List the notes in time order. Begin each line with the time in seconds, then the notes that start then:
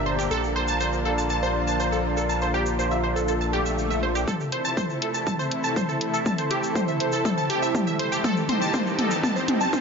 Already playing: G1 A#2 D3 G3 D4 G4 A#4 D5 A#5
0.06 C5
0.19 G4, shaker
0.31 A#1 F3 F4 A4, shaker
0.44 shaker
0.56 C5
0.68 A5, shaker
0.80 C5, shaker
0.93 shaker
1.05 A4
1.18 A5, shaker
1.30 A5, shaker
1.43 C5, shaker
1.67 A5, shaker
1.80 C5, shaker
1.92 A4, shaker
2.17 A4, shaker
2.29 A5, shaker
2.41 C5, shaker
2.54 G4
2.66 shaker
2.79 C5, shaker
2.91 E5, shaker
3.04 C5
3.16 A4, shaker
3.28 A4, swell, shaker
3.41 A5, shaker
3.53 G4
3.66 E5, shaker
3.78 shaker
3.90 E5, shaker
4.03 C5
4.15 G4, shaker
4.28 C3 E3 A3 E4 A4, kick, mid tom, riser, shaker
4.40 shaker
4.52 C5, closed hi-hat
4.59 A4
4.65 A5, shaker
4.77 C5, kick, mid tom, shaker
4.90 shaker
5.02 A4 C5, closed hi-hat
5.14 A5, shaker
5.27 A5, kick, mid tom, shaker
5.39 C5, shaker
5.51 A5, closed hi-hat
5.64 A5, shaker
5.76 C5, kick, mid tom, shaker
5.89 A4, shaker
6.01 closed hi-hat
6.14 A4, shaker
6.26 A5, kick, mid tom, shaker
6.38 C5, closed hi-hat, shaker
6.51 G4, closed hi-hat
6.63 shaker
6.75 C5, kick, mid tom, shaker
6.88 E5, shaker
7.00 C5, closed hi-hat
7.12 A4, shaker
7.25 A4, kick, mid tom, shaker
7.38 A5, shaker
7.50 G4, closed hi-hat
7.62 E5, shaker
7.75 kick, mid tom, shaker
7.87 E5, shaker
7.99 C5, closed hi-hat
8.12 G4, shaker
8.24 D#3 G3 D#4 G4 A4, kick, mid tom, shaker
8.37 shaker
8.49 C5, closed hi-hat, mid tom
8.62 A5, shaker
8.74 G4 C5, kick, mid tom, shaker
8.87 G5, shaker
8.99 A4, closed hi-hat, mid tom
9.11 A5, shaker
9.23 A5, kick, mid tom, shaker
9.36 C5, shaker
9.48 closed hi-hat, mid tom
9.61 A5, shaker
9.73 C5, kick, mid tom, shaker